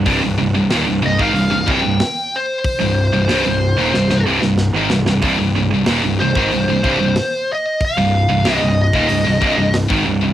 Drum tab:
HH |o---o---o---o---|o---o-----------|o---o---o---o---|o---o---o---o---|
SD |----o-------o---|----o---oo-oo-oo|----o-------o---|----o-------o---|
BD |o------o--o-----|o---------------|o------o--o-----|o------o--o--o--|